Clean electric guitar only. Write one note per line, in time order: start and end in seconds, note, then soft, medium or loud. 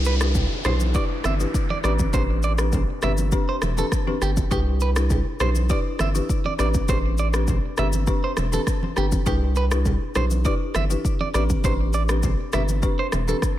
0.06 0.14 B4 medium
0.66 0.74 C5 medium
0.96 1.03 D5 medium
1.25 1.33 E5 medium
1.70 1.78 D5 medium
1.84 1.92 D5 medium
2.14 2.22 C5 medium
2.44 2.52 D5 medium
3.04 3.11 E5 medium
3.49 3.56 C5 medium
3.79 3.86 A4 medium
4.22 4.30 G4 medium
4.52 4.60 G4 loud
4.82 4.90 B4 medium
5.41 5.49 C5 medium
5.71 5.79 D5 medium
6.01 6.08 E5 medium
6.46 6.53 D5 medium
6.60 6.68 D5 medium
6.90 6.97 C5 medium
7.19 7.27 D5 medium
7.79 7.87 E5 medium
8.24 8.31 C5 medium
8.54 8.61 A4 medium
8.98 9.05 G4 medium
9.27 9.35 G4 loud
9.57 9.65 B4 medium
10.16 10.24 C5 medium
10.46 10.54 D5 medium
10.76 10.83 E5 medium
11.21 11.28 D5 medium
11.35 11.43 D5 medium
11.65 11.73 C5 medium
11.94 12.02 D5 medium
12.54 12.62 E5 medium
12.99 13.06 C5 medium
13.29 13.36 A4 medium